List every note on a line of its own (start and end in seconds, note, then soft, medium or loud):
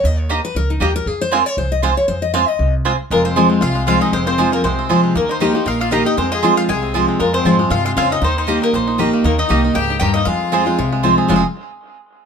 0.04 0.39 D#2 medium
0.04 0.19 D#5 loud
0.19 0.31 C#5 loud
0.29 0.40 A#3 medium
0.29 0.36 A#3 medium
0.29 0.33 D#4 medium
0.29 0.40 G4 loud
0.29 0.44 C5 medium
0.29 0.40 D#5 loud
0.29 0.40 A#5 loud
0.45 0.55 B4 loud
0.55 0.77 C#2 medium
0.55 0.69 A#4 loud
0.70 0.81 D#4 medium
0.80 1.02 D#2 medium
0.80 0.90 A#3 medium
0.80 0.88 A#3 medium
0.80 0.84 D#4 medium
0.80 0.91 G4 medium
0.80 0.95 G4 medium
0.80 0.91 D#5 loud
0.80 0.91 A#5 loud
0.96 1.07 A#4 loud
1.06 1.41 F2 medium
1.06 1.20 G#4 medium
1.21 1.33 C5 loud
1.31 1.38 G#3 medium
1.31 1.42 C4 medium
1.31 1.38 C4 medium
1.31 1.42 F4 medium
1.31 1.39 F4 medium
1.31 1.46 A#4 medium
1.31 1.42 C5 loud
1.31 1.42 G#5 loud
1.46 1.57 C#5 loud
1.57 1.92 C2 medium
1.57 1.71 C5 medium
1.72 1.83 D#5 loud
1.82 1.90 G#3 medium
1.82 1.93 C4 medium
1.82 1.90 C4 medium
1.82 1.93 F4 medium
1.82 1.90 F4 medium
1.82 1.93 C5 medium
1.82 1.97 F5 loud
1.82 1.93 G#5 loud
1.97 2.08 C#5 medium
2.08 2.43 F2 medium
2.08 2.22 C5 loud
2.22 2.33 D#5 loud
2.34 2.41 G#3 medium
2.34 2.44 C4 medium
2.34 2.41 C4 medium
2.34 2.44 F4 medium
2.34 2.41 F4 medium
2.34 2.44 C5 loud
2.34 2.48 F5 loud
2.34 2.44 G#5 loud
2.48 2.74 D#5 loud
2.59 2.94 C2 loud
2.85 2.91 G#3 medium
2.85 2.95 C4 medium
2.85 2.92 C4 medium
2.85 2.95 F4 loud
2.85 2.92 F4 medium
2.85 2.95 C5 medium
2.85 2.95 G#5 medium
3.10 3.46 F1 medium
3.10 3.60 F2 medium
3.10 3.48 G#3 medium
3.10 3.25 F4 medium
3.10 3.25 A#4 medium
3.25 3.60 C4 medium
3.25 3.60 F4 medium
3.25 3.63 C5 medium
3.36 3.61 F3 medium
3.36 3.61 G#3 medium
3.36 3.46 C4 medium
3.36 3.61 C4 medium
3.36 3.46 F4 medium
3.36 3.62 F4 medium
3.36 3.73 G#4 medium
3.36 3.46 C5 loud
3.36 3.47 G#5 medium
3.50 3.74 G#3 medium
3.61 3.96 C2 medium
3.61 4.11 C3 medium
3.61 3.98 F4 medium
3.61 3.86 F4 medium
3.61 3.86 F5 loud
3.75 4.10 G#3 medium
3.87 4.12 F3 medium
3.87 4.12 G#3 medium
3.87 4.24 C4 medium
3.87 3.97 C4 medium
3.87 4.12 C4 medium
3.87 3.97 F4 medium
3.87 4.01 F4 medium
3.87 4.12 F4 medium
3.87 3.97 C5 medium
3.87 4.01 F5 loud
3.87 3.98 G#5 medium
4.01 4.12 D#4 medium
4.01 4.36 G#4 medium
4.01 4.12 D#5 medium
4.12 4.48 F1 medium
4.12 4.62 F2 medium
4.12 4.50 G#3 medium
4.12 4.26 C4 medium
4.12 4.26 C5 loud
4.26 4.51 C4 medium
4.26 4.51 F4 medium
4.26 4.51 C5 medium
4.38 4.52 F3 medium
4.38 4.52 G#3 medium
4.38 4.48 C4 medium
4.38 4.53 C4 medium
4.38 4.48 F4 loud
4.38 4.51 F4 medium
4.38 4.75 G#4 medium
4.38 4.49 C5 loud
4.38 4.49 G#5 medium
4.52 4.63 A#3 medium
4.52 4.64 C4 medium
4.52 4.63 F4 medium
4.52 4.87 F4 medium
4.52 4.63 A#4 medium
4.63 4.99 C2 medium
4.63 5.13 C3 medium
4.63 5.01 G#3 medium
4.63 4.88 C4 medium
4.63 4.88 C5 medium
4.79 5.13 C4 medium
4.89 5.14 F3 medium
4.89 5.14 G#3 medium
4.89 5.00 C4 medium
4.89 5.15 C4 medium
4.89 5.00 F4 medium
4.89 5.15 F4 medium
4.89 5.15 G#4 medium
4.89 5.00 C5 loud
4.89 5.00 G#5 medium
5.04 5.15 G#3 medium
5.15 5.50 D#2 medium
5.15 5.39 D#3 medium
5.15 5.52 A#3 medium
5.15 5.29 A#3 medium
5.15 5.29 A#4 medium
5.29 5.64 D#4 medium
5.29 5.65 D#4 medium
5.29 5.68 C5 medium
5.40 5.54 D#3 medium
5.40 5.78 D#3 medium
5.40 5.51 A#3 loud
5.40 5.55 A#3 loud
5.40 5.55 D#4 medium
5.40 5.51 G4 medium
5.40 5.53 G4 loud
5.40 5.51 D#5 medium
5.40 5.51 A#5 medium
5.54 5.79 A#3 medium
5.54 5.67 D#4 medium
5.54 5.66 G4 medium
5.66 6.01 A#1 medium
5.66 6.15 A#2 loud
5.66 5.91 D#4 medium
5.66 5.80 A#4 medium
5.66 5.80 F5 loud
5.81 6.16 A#3 medium
5.81 5.92 F4 medium
5.81 5.91 F5 loud
5.91 6.05 D#3 medium
5.91 6.02 A#3 medium
5.91 6.05 A#3 loud
5.91 6.05 D#4 medium
5.91 6.05 D#4 loud
5.91 6.02 G4 medium
5.91 6.04 G4 medium
5.91 6.05 A#4 medium
5.91 6.02 D#5 medium
5.91 6.07 F5 loud
5.91 6.02 A#5 medium
6.05 6.18 D#4 medium
6.05 6.17 D#4 soft
6.05 6.17 D#4 medium
6.05 6.17 G4 medium
6.05 6.18 D#5 loud
6.17 6.67 F2 medium
6.17 6.53 F2 medium
6.17 6.55 G#3 medium
6.17 6.31 C4 medium
6.17 6.31 C5 medium
6.31 6.56 F4 medium
6.31 6.56 G#4 medium
6.31 6.56 D#5 medium
6.43 6.67 F3 medium
6.43 6.68 G#3 medium
6.43 6.53 C4 loud
6.43 6.68 C4 medium
6.43 6.53 F4 medium
6.43 6.68 F4 loud
6.43 6.80 G#4 medium
6.43 6.53 C5 loud
6.43 6.53 G#5 medium
6.57 6.63 F4 medium
6.57 6.62 F5 loud
6.69 7.04 C2 medium
6.69 7.18 C3 loud
6.69 7.06 G#3 medium
6.69 6.93 G#4 medium
6.69 6.93 G#5 loud
6.83 7.18 C4 medium
6.94 7.19 F3 medium
6.94 7.19 G#3 medium
6.94 7.04 C4 medium
6.94 7.20 C4 medium
6.94 7.04 F4 medium
6.94 7.20 F4 loud
6.94 7.31 G#4 medium
6.94 7.05 C5 medium
6.94 7.05 G#5 medium
7.08 7.18 G#3 medium
7.19 7.37 F2 medium
7.19 7.69 F2 medium
7.19 7.57 G#3 medium
7.19 7.33 F4 medium
7.19 7.34 A#4 medium
7.33 7.69 C4 medium
7.33 7.69 F4 medium
7.33 7.72 C5 medium
7.45 7.67 G#2 medium
7.45 7.82 F3 medium
7.45 7.59 F3 medium
7.45 7.59 G#3 medium
7.45 7.55 C4 medium
7.45 7.60 C4 medium
7.45 7.56 F4 medium
7.45 7.58 F4 medium
7.45 7.56 C5 medium
7.45 7.56 G#5 loud
7.59 7.84 G#3 medium
7.59 7.71 C4 medium
7.59 7.71 F4 medium
7.70 7.93 G2 medium
7.70 7.95 C3 loud
7.70 8.08 F4 medium
7.70 7.84 F4 medium
7.70 7.84 F5 loud
7.85 8.20 G#3 medium
7.85 7.91 F4 medium
7.85 7.91 F5 loud
7.96 8.18 F2 medium
7.96 8.21 C#3 medium
7.96 8.07 C4 medium
7.96 8.22 C4 medium
7.96 8.07 F4 medium
7.96 8.10 F4 medium
7.96 8.07 C5 medium
7.96 8.10 F5 loud
7.96 8.07 G#5 medium
8.11 8.22 D#4 medium
8.11 8.23 F4 medium
8.11 8.23 D#5 loud
8.22 8.57 D#2 medium
8.22 8.46 D#3 medium
8.22 8.35 D#4 medium
8.22 8.59 D#4 medium
8.22 8.37 C5 loud
8.37 8.60 D#4 medium
8.37 8.61 C5 medium
8.47 8.72 D#3 medium
8.47 8.58 A#3 medium
8.47 8.72 A#3 medium
8.47 8.72 D#4 loud
8.47 8.58 G4 medium
8.47 8.73 G4 loud
8.47 8.58 D#5 loud
8.47 8.58 A#5 loud
8.62 8.73 A#3 medium
8.62 8.86 D#4 medium
8.62 8.74 A#4 medium
8.73 9.08 A#1 medium
8.73 9.23 A#2 loud
8.73 9.10 A#3 medium
8.73 8.97 D#4 medium
8.73 8.98 C5 medium
8.87 9.22 D#4 medium
8.98 9.23 D#3 medium
8.98 9.36 D#3 medium
8.98 9.09 A#3 medium
8.98 9.24 A#3 medium
8.98 9.24 D#4 medium
8.98 9.09 G4 medium
8.98 9.24 G4 loud
8.98 9.09 D#5 medium
8.98 9.09 A#5 loud
9.13 9.48 A#3 medium
9.24 9.42 D#2 medium
9.24 9.48 D#3 medium
9.24 9.37 A#3 medium
9.24 9.37 D#4 medium
9.24 9.39 A#4 loud
9.38 9.63 D#4 medium
9.38 9.73 D#4 medium
9.38 9.77 D#5 medium
9.49 9.72 C2 medium
9.49 9.74 D#3 medium
9.49 9.60 A#3 medium
9.49 9.74 A#3 medium
9.49 9.75 A#3 medium
9.49 9.75 D#4 medium
9.49 9.60 G4 loud
9.49 9.75 G4 medium
9.49 9.60 D#5 loud
9.49 9.60 A#5 loud
9.65 9.89 D#4 medium
9.75 9.97 C#2 medium
9.75 10.00 G#2 medium
9.75 10.13 A#3 medium
9.75 9.99 G4 medium
9.75 9.98 G5 loud
9.90 10.25 D#4 medium
10.00 10.23 D#2 medium
10.00 10.25 G2 loud
10.00 10.27 D#3 medium
10.00 10.11 A#3 medium
10.00 10.14 G4 medium
10.00 10.11 G4 medium
10.00 10.11 D#5 medium
10.00 10.13 G5 loud
10.00 10.11 A#5 medium
10.14 10.27 A#3 medium
10.14 10.26 D#4 medium
10.14 10.26 D#5 loud
10.25 10.62 F2 medium
10.25 10.76 F2 medium
10.25 10.64 G#3 medium
10.25 10.99 F4 medium
10.25 10.99 F5 loud
10.52 10.66 F3 medium
10.52 10.66 G#3 medium
10.52 10.62 C4 medium
10.52 10.66 C4 medium
10.52 10.62 F4 medium
10.52 10.65 F4 medium
10.52 10.90 G#4 medium
10.52 10.62 C5 medium
10.52 10.63 G#5 medium
10.66 10.91 G#3 medium
10.66 10.78 C4 medium
10.66 10.77 F4 medium
10.78 11.13 C2 medium
10.78 11.27 C3 loud
10.78 11.15 F4 medium
10.92 11.27 G#3 medium
11.03 11.28 F3 medium
11.03 11.28 G#3 medium
11.03 11.13 C4 medium
11.03 11.29 C4 medium
11.03 11.28 C4 medium
11.03 11.13 F4 medium
11.03 11.29 F4 medium
11.03 11.13 C5 medium
11.03 11.14 G#5 medium
11.18 11.29 G#4 medium
11.28 11.42 F1 medium
11.28 11.40 F2 medium
11.28 11.40 C3 medium
11.28 11.40 F3 medium
11.28 11.41 G#3 medium
11.28 11.43 G#3 medium
11.28 11.40 C4 medium
11.28 11.41 C4 loud
11.28 11.44 C4 medium
11.28 11.40 F4 medium
11.28 11.41 F4 medium
11.28 11.41 C5 medium
11.28 11.41 G#5 loud
11.34 11.45 F4 medium
11.34 11.46 G#4 medium